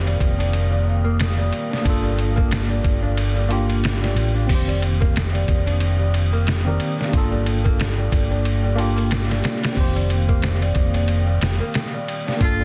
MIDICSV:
0, 0, Header, 1, 7, 480
1, 0, Start_track
1, 0, Tempo, 659341
1, 1348, Time_signature, 4, 2, 24, 8
1, 9204, End_track
2, 0, Start_track
2, 0, Title_t, "Ambient pad"
2, 0, Program_c, 0, 92
2, 0, Note_on_c, 0, 58, 80
2, 0, Note_on_c, 0, 77, 72
2, 0, Note_on_c, 0, 79, 78
2, 0, Note_on_c, 0, 87, 88
2, 1316, Note_off_c, 0, 79, 0
2, 1331, Note_off_c, 0, 87, 0
2, 1338, Note_on_c, 0, 79, 78
2, 1346, Note_on_c, 0, 86, 94
2, 3248, Note_off_c, 0, 86, 0
2, 3283, Note_on_c, 0, 87, 88
2, 5156, Note_off_c, 0, 77, 0
2, 5158, Note_off_c, 0, 58, 0
2, 5176, Note_off_c, 0, 87, 0
2, 5195, Note_on_c, 0, 77, 82
2, 5196, Note_on_c, 0, 58, 88
2, 5197, Note_on_c, 0, 86, 88
2, 7093, Note_off_c, 0, 86, 0
2, 7104, Note_on_c, 0, 87, 97
2, 9003, Note_off_c, 0, 58, 0
2, 9007, Note_off_c, 0, 87, 0
2, 9024, Note_on_c, 0, 58, 79
2, 9027, Note_on_c, 0, 86, 90
2, 9204, Note_off_c, 0, 58, 0
2, 9204, Note_off_c, 0, 77, 0
2, 9204, Note_off_c, 0, 79, 0
2, 9204, Note_off_c, 0, 86, 0
2, 9204, End_track
3, 0, Start_track
3, 0, Title_t, "Muted trumpet"
3, 0, Program_c, 1, 59
3, 9042, Note_on_c, 1, 65, 104
3, 9204, Note_off_c, 1, 65, 0
3, 9204, End_track
4, 0, Start_track
4, 0, Title_t, "Tine electric piano"
4, 0, Program_c, 2, 4
4, 0, Control_c, 2, 64, 127
4, 0, Note_on_c, 2, 51, 69
4, 0, Note_on_c, 2, 60, 73
4, 0, Note_on_c, 2, 67, 70
4, 0, Note_on_c, 2, 72, 88
4, 589, Note_off_c, 2, 60, 0
4, 598, Note_off_c, 2, 51, 0
4, 609, Note_off_c, 2, 67, 0
4, 618, Note_off_c, 2, 72, 0
4, 1320, Note_on_c, 2, 58, 93
4, 1343, Note_on_c, 2, 62, 89
4, 1356, Control_c, 2, 64, 0
4, 1361, Note_on_c, 2, 65, 85
4, 1381, Note_on_c, 2, 69, 108
4, 1469, Control_c, 2, 64, 127
4, 2510, Note_off_c, 2, 58, 0
4, 2521, Note_off_c, 2, 62, 0
4, 2530, Note_off_c, 2, 65, 0
4, 2540, Note_off_c, 2, 69, 0
4, 2540, Note_on_c, 2, 58, 98
4, 2549, Note_on_c, 2, 62, 85
4, 2558, Note_on_c, 2, 65, 89
4, 2566, Note_on_c, 2, 67, 108
4, 2651, Note_off_c, 2, 58, 0
4, 2656, Note_off_c, 2, 62, 0
4, 2660, Note_off_c, 2, 65, 0
4, 2664, Note_off_c, 2, 67, 0
4, 3252, Note_on_c, 2, 60, 78
4, 3274, Note_on_c, 2, 51, 70
4, 3279, Control_c, 2, 64, 0
4, 3288, Note_on_c, 2, 67, 73
4, 3310, Note_on_c, 2, 72, 84
4, 3416, Control_c, 2, 64, 127
4, 4436, Note_off_c, 2, 60, 0
4, 4447, Note_off_c, 2, 51, 0
4, 4454, Note_off_c, 2, 67, 0
4, 4465, Note_off_c, 2, 72, 0
4, 4839, Note_on_c, 2, 60, 78
4, 4846, Note_on_c, 2, 51, 74
4, 4857, Note_on_c, 2, 67, 75
4, 4865, Note_on_c, 2, 70, 90
4, 5159, Note_off_c, 2, 60, 0
4, 5162, Note_on_c, 2, 58, 97
4, 5163, Note_off_c, 2, 51, 0
4, 5169, Note_off_c, 2, 67, 0
4, 5172, Note_off_c, 2, 70, 0
4, 5181, Note_on_c, 2, 62, 83
4, 5197, Control_c, 2, 64, 0
4, 5203, Note_on_c, 2, 65, 91
4, 5222, Note_on_c, 2, 69, 108
4, 5334, Control_c, 2, 64, 127
4, 6351, Note_off_c, 2, 58, 0
4, 6361, Note_off_c, 2, 62, 0
4, 6371, Note_off_c, 2, 65, 0
4, 6375, Note_on_c, 2, 58, 103
4, 6381, Note_off_c, 2, 69, 0
4, 6387, Note_on_c, 2, 62, 88
4, 6395, Note_on_c, 2, 65, 89
4, 6407, Note_on_c, 2, 67, 109
4, 6489, Note_off_c, 2, 58, 0
4, 6495, Note_off_c, 2, 62, 0
4, 6499, Note_off_c, 2, 65, 0
4, 6505, Note_off_c, 2, 67, 0
4, 7082, Note_on_c, 2, 60, 83
4, 7101, Note_on_c, 2, 51, 70
4, 7118, Control_c, 2, 64, 0
4, 7122, Note_on_c, 2, 67, 76
4, 7138, Note_on_c, 2, 72, 89
4, 7226, Control_c, 2, 64, 127
4, 8271, Note_off_c, 2, 60, 0
4, 8281, Note_off_c, 2, 51, 0
4, 8291, Note_off_c, 2, 67, 0
4, 8299, Note_off_c, 2, 72, 0
4, 9004, Note_on_c, 2, 58, 99
4, 9021, Note_on_c, 2, 62, 82
4, 9038, Control_c, 2, 64, 0
4, 9041, Note_on_c, 2, 65, 85
4, 9062, Note_on_c, 2, 69, 105
4, 9183, Control_c, 2, 64, 127
4, 9204, Note_off_c, 2, 58, 0
4, 9204, Note_off_c, 2, 62, 0
4, 9204, Note_off_c, 2, 65, 0
4, 9204, Note_off_c, 2, 69, 0
4, 9204, End_track
5, 0, Start_track
5, 0, Title_t, "Nylon-string guitar"
5, 0, Program_c, 3, 24
5, 41, Note_on_c, 3, 55, 72
5, 271, Note_off_c, 3, 55, 0
5, 277, Note_on_c, 3, 62, 77
5, 508, Note_off_c, 3, 62, 0
5, 517, Note_on_c, 3, 55, 66
5, 617, Note_off_c, 3, 55, 0
5, 759, Note_on_c, 3, 58, 98
5, 858, Note_off_c, 3, 58, 0
5, 997, Note_on_c, 3, 55, 76
5, 1228, Note_off_c, 3, 55, 0
5, 1243, Note_on_c, 3, 62, 76
5, 1346, Note_off_c, 3, 62, 0
5, 1480, Note_on_c, 3, 55, 74
5, 1579, Note_off_c, 3, 55, 0
5, 1716, Note_on_c, 3, 58, 105
5, 1817, Note_off_c, 3, 58, 0
5, 1956, Note_on_c, 3, 55, 76
5, 2188, Note_off_c, 3, 55, 0
5, 2200, Note_on_c, 3, 62, 75
5, 2430, Note_off_c, 3, 62, 0
5, 2440, Note_on_c, 3, 55, 75
5, 2539, Note_off_c, 3, 55, 0
5, 2683, Note_on_c, 3, 58, 96
5, 2780, Note_off_c, 3, 58, 0
5, 2922, Note_on_c, 3, 55, 76
5, 3151, Note_off_c, 3, 55, 0
5, 3164, Note_on_c, 3, 62, 70
5, 3266, Note_off_c, 3, 62, 0
5, 3404, Note_on_c, 3, 55, 83
5, 3501, Note_off_c, 3, 55, 0
5, 3643, Note_on_c, 3, 58, 102
5, 3741, Note_off_c, 3, 58, 0
5, 3881, Note_on_c, 3, 55, 78
5, 4110, Note_off_c, 3, 55, 0
5, 4121, Note_on_c, 3, 62, 82
5, 4350, Note_off_c, 3, 62, 0
5, 4366, Note_on_c, 3, 55, 72
5, 4462, Note_off_c, 3, 55, 0
5, 4605, Note_on_c, 3, 58, 97
5, 4701, Note_off_c, 3, 58, 0
5, 4845, Note_on_c, 3, 55, 74
5, 5072, Note_off_c, 3, 55, 0
5, 5082, Note_on_c, 3, 62, 73
5, 5185, Note_off_c, 3, 62, 0
5, 5322, Note_on_c, 3, 55, 81
5, 5420, Note_off_c, 3, 55, 0
5, 5565, Note_on_c, 3, 58, 105
5, 5661, Note_off_c, 3, 58, 0
5, 5807, Note_on_c, 3, 55, 72
5, 6033, Note_off_c, 3, 55, 0
5, 6049, Note_on_c, 3, 62, 76
5, 6274, Note_off_c, 3, 62, 0
5, 6287, Note_on_c, 3, 55, 78
5, 6382, Note_off_c, 3, 55, 0
5, 6524, Note_on_c, 3, 58, 97
5, 6621, Note_off_c, 3, 58, 0
5, 6765, Note_on_c, 3, 55, 80
5, 6992, Note_off_c, 3, 55, 0
5, 7005, Note_on_c, 3, 62, 73
5, 7106, Note_off_c, 3, 62, 0
5, 7246, Note_on_c, 3, 55, 78
5, 7342, Note_off_c, 3, 55, 0
5, 7488, Note_on_c, 3, 58, 103
5, 7583, Note_off_c, 3, 58, 0
5, 7731, Note_on_c, 3, 55, 76
5, 7955, Note_off_c, 3, 55, 0
5, 7967, Note_on_c, 3, 62, 73
5, 8194, Note_off_c, 3, 62, 0
5, 8202, Note_on_c, 3, 55, 70
5, 8300, Note_off_c, 3, 55, 0
5, 8446, Note_on_c, 3, 58, 95
5, 8542, Note_off_c, 3, 58, 0
5, 8689, Note_on_c, 3, 55, 75
5, 8914, Note_off_c, 3, 55, 0
5, 8930, Note_on_c, 3, 62, 71
5, 9029, Note_off_c, 3, 62, 0
5, 9173, Note_on_c, 3, 55, 80
5, 9204, Note_off_c, 3, 55, 0
5, 9204, End_track
6, 0, Start_track
6, 0, Title_t, "Fingered electric bass"
6, 0, Program_c, 4, 33
6, 0, Note_on_c, 4, 29, 95
6, 129, Note_off_c, 4, 29, 0
6, 149, Note_on_c, 4, 29, 84
6, 1089, Note_off_c, 4, 29, 0
6, 1349, Note_on_c, 4, 31, 93
6, 2050, Note_off_c, 4, 31, 0
6, 2072, Note_on_c, 4, 31, 82
6, 3011, Note_off_c, 4, 31, 0
6, 3026, Note_on_c, 4, 33, 99
6, 3243, Note_off_c, 4, 33, 0
6, 3273, Note_on_c, 4, 29, 92
6, 3971, Note_off_c, 4, 29, 0
6, 3991, Note_on_c, 4, 29, 86
6, 4930, Note_off_c, 4, 29, 0
6, 5193, Note_on_c, 4, 31, 103
6, 5891, Note_off_c, 4, 31, 0
6, 5912, Note_on_c, 4, 31, 88
6, 6851, Note_off_c, 4, 31, 0
6, 7112, Note_on_c, 4, 29, 103
6, 7811, Note_off_c, 4, 29, 0
6, 7831, Note_on_c, 4, 29, 94
6, 8306, Note_off_c, 4, 29, 0
6, 8310, Note_on_c, 4, 29, 88
6, 8432, Note_off_c, 4, 29, 0
6, 9030, Note_on_c, 4, 31, 91
6, 9204, Note_off_c, 4, 31, 0
6, 9204, End_track
7, 0, Start_track
7, 0, Title_t, "Drums"
7, 51, Note_on_c, 9, 51, 42
7, 124, Note_off_c, 9, 51, 0
7, 148, Note_on_c, 9, 36, 93
7, 152, Note_on_c, 9, 51, 68
7, 221, Note_off_c, 9, 36, 0
7, 225, Note_off_c, 9, 51, 0
7, 292, Note_on_c, 9, 51, 44
7, 365, Note_off_c, 9, 51, 0
7, 388, Note_on_c, 9, 51, 88
7, 461, Note_off_c, 9, 51, 0
7, 870, Note_on_c, 9, 51, 88
7, 878, Note_on_c, 9, 38, 116
7, 942, Note_off_c, 9, 51, 0
7, 951, Note_off_c, 9, 38, 0
7, 1110, Note_on_c, 9, 51, 64
7, 1183, Note_off_c, 9, 51, 0
7, 1262, Note_on_c, 9, 38, 35
7, 1335, Note_off_c, 9, 38, 0
7, 1348, Note_on_c, 9, 36, 111
7, 1350, Note_on_c, 9, 51, 94
7, 1421, Note_off_c, 9, 36, 0
7, 1423, Note_off_c, 9, 51, 0
7, 1591, Note_on_c, 9, 51, 67
7, 1664, Note_off_c, 9, 51, 0
7, 1728, Note_on_c, 9, 36, 100
7, 1801, Note_off_c, 9, 36, 0
7, 1829, Note_on_c, 9, 51, 78
7, 1838, Note_on_c, 9, 38, 107
7, 1902, Note_off_c, 9, 51, 0
7, 1911, Note_off_c, 9, 38, 0
7, 2070, Note_on_c, 9, 36, 100
7, 2071, Note_on_c, 9, 51, 64
7, 2143, Note_off_c, 9, 36, 0
7, 2143, Note_off_c, 9, 51, 0
7, 2311, Note_on_c, 9, 51, 86
7, 2383, Note_off_c, 9, 51, 0
7, 2552, Note_on_c, 9, 51, 65
7, 2625, Note_off_c, 9, 51, 0
7, 2690, Note_on_c, 9, 51, 42
7, 2763, Note_off_c, 9, 51, 0
7, 2794, Note_on_c, 9, 51, 89
7, 2803, Note_on_c, 9, 38, 118
7, 2867, Note_off_c, 9, 51, 0
7, 2875, Note_off_c, 9, 38, 0
7, 2940, Note_on_c, 9, 38, 54
7, 3013, Note_off_c, 9, 38, 0
7, 3032, Note_on_c, 9, 51, 68
7, 3104, Note_off_c, 9, 51, 0
7, 3271, Note_on_c, 9, 36, 116
7, 3271, Note_on_c, 9, 46, 83
7, 3344, Note_off_c, 9, 36, 0
7, 3344, Note_off_c, 9, 46, 0
7, 3412, Note_on_c, 9, 51, 42
7, 3485, Note_off_c, 9, 51, 0
7, 3512, Note_on_c, 9, 51, 66
7, 3584, Note_off_c, 9, 51, 0
7, 3652, Note_on_c, 9, 36, 100
7, 3725, Note_off_c, 9, 36, 0
7, 3756, Note_on_c, 9, 51, 84
7, 3765, Note_on_c, 9, 38, 105
7, 3829, Note_off_c, 9, 51, 0
7, 3837, Note_off_c, 9, 38, 0
7, 3894, Note_on_c, 9, 51, 43
7, 3966, Note_off_c, 9, 51, 0
7, 3990, Note_on_c, 9, 36, 97
7, 3990, Note_on_c, 9, 51, 70
7, 4063, Note_off_c, 9, 36, 0
7, 4063, Note_off_c, 9, 51, 0
7, 4129, Note_on_c, 9, 51, 43
7, 4202, Note_off_c, 9, 51, 0
7, 4225, Note_on_c, 9, 51, 90
7, 4298, Note_off_c, 9, 51, 0
7, 4470, Note_on_c, 9, 51, 70
7, 4543, Note_off_c, 9, 51, 0
7, 4710, Note_on_c, 9, 51, 86
7, 4718, Note_on_c, 9, 38, 117
7, 4782, Note_off_c, 9, 51, 0
7, 4791, Note_off_c, 9, 38, 0
7, 4949, Note_on_c, 9, 51, 65
7, 5022, Note_off_c, 9, 51, 0
7, 5102, Note_on_c, 9, 38, 38
7, 5175, Note_off_c, 9, 38, 0
7, 5193, Note_on_c, 9, 36, 110
7, 5193, Note_on_c, 9, 51, 93
7, 5266, Note_off_c, 9, 36, 0
7, 5266, Note_off_c, 9, 51, 0
7, 5433, Note_on_c, 9, 51, 65
7, 5506, Note_off_c, 9, 51, 0
7, 5573, Note_on_c, 9, 36, 99
7, 5646, Note_off_c, 9, 36, 0
7, 5675, Note_on_c, 9, 51, 84
7, 5684, Note_on_c, 9, 38, 103
7, 5748, Note_off_c, 9, 51, 0
7, 5757, Note_off_c, 9, 38, 0
7, 5912, Note_on_c, 9, 36, 98
7, 5915, Note_on_c, 9, 51, 72
7, 5984, Note_off_c, 9, 36, 0
7, 5987, Note_off_c, 9, 51, 0
7, 6154, Note_on_c, 9, 51, 87
7, 6227, Note_off_c, 9, 51, 0
7, 6395, Note_on_c, 9, 51, 66
7, 6467, Note_off_c, 9, 51, 0
7, 6535, Note_on_c, 9, 51, 41
7, 6607, Note_off_c, 9, 51, 0
7, 6631, Note_on_c, 9, 51, 87
7, 6640, Note_on_c, 9, 38, 117
7, 6704, Note_off_c, 9, 51, 0
7, 6712, Note_off_c, 9, 38, 0
7, 6780, Note_on_c, 9, 38, 50
7, 6853, Note_off_c, 9, 38, 0
7, 6871, Note_on_c, 9, 51, 80
7, 6880, Note_on_c, 9, 38, 101
7, 6944, Note_off_c, 9, 51, 0
7, 6952, Note_off_c, 9, 38, 0
7, 7013, Note_on_c, 9, 51, 73
7, 7022, Note_on_c, 9, 38, 102
7, 7086, Note_off_c, 9, 51, 0
7, 7095, Note_off_c, 9, 38, 0
7, 7112, Note_on_c, 9, 36, 117
7, 7114, Note_on_c, 9, 46, 82
7, 7185, Note_off_c, 9, 36, 0
7, 7187, Note_off_c, 9, 46, 0
7, 7253, Note_on_c, 9, 51, 40
7, 7326, Note_off_c, 9, 51, 0
7, 7353, Note_on_c, 9, 51, 67
7, 7426, Note_off_c, 9, 51, 0
7, 7491, Note_on_c, 9, 36, 97
7, 7563, Note_off_c, 9, 36, 0
7, 7588, Note_on_c, 9, 51, 80
7, 7597, Note_on_c, 9, 38, 106
7, 7661, Note_off_c, 9, 51, 0
7, 7670, Note_off_c, 9, 38, 0
7, 7731, Note_on_c, 9, 51, 43
7, 7804, Note_off_c, 9, 51, 0
7, 7824, Note_on_c, 9, 51, 68
7, 7829, Note_on_c, 9, 36, 97
7, 7897, Note_off_c, 9, 51, 0
7, 7902, Note_off_c, 9, 36, 0
7, 7965, Note_on_c, 9, 51, 44
7, 8038, Note_off_c, 9, 51, 0
7, 8065, Note_on_c, 9, 51, 83
7, 8138, Note_off_c, 9, 51, 0
7, 8309, Note_on_c, 9, 51, 79
7, 8318, Note_on_c, 9, 38, 101
7, 8382, Note_off_c, 9, 51, 0
7, 8391, Note_off_c, 9, 38, 0
7, 8548, Note_on_c, 9, 51, 91
7, 8556, Note_on_c, 9, 38, 122
7, 8620, Note_off_c, 9, 51, 0
7, 8629, Note_off_c, 9, 38, 0
7, 8797, Note_on_c, 9, 51, 67
7, 8870, Note_off_c, 9, 51, 0
7, 8942, Note_on_c, 9, 38, 38
7, 9015, Note_off_c, 9, 38, 0
7, 9031, Note_on_c, 9, 36, 111
7, 9032, Note_on_c, 9, 51, 91
7, 9104, Note_off_c, 9, 36, 0
7, 9105, Note_off_c, 9, 51, 0
7, 9204, End_track
0, 0, End_of_file